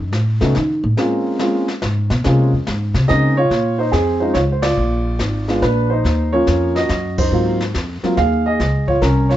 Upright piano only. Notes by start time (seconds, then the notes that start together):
0.41 A3 B3 C#4 D#4 F#4
0.97 G#3 A#3 C4 C#4 F4
1.39 G#3 A#3 C4 C#4 F4
2.24 G#3 A#3 C4 C#4 F4
3.08 G#3 A#3 C4 C#4 D#4 G#4 D#5
3.37 F4 C#5
3.78 D#4 C5
3.92 C4 G#4
4.20 G#3 C4 C#4 D#4 F4 C5
4.34 F4 C#5
4.52 C5
4.62 F4 D5
5.48 G#3 B3 D4 F4
5.62 D4 B4
5.90 D#4 C5
6.33 F3 A#3 C#4 F4 C#5
6.75 F#4 D#5
7.18 D#4 C5
7.32 F#3 A#3 C4 F4
8.03 F#3 A#3 C4 F4
8.17 G#4 F5
8.46 G#4 D#5
8.88 F4 C#5
9.02 C#4 A#4
9.29 F4 C#5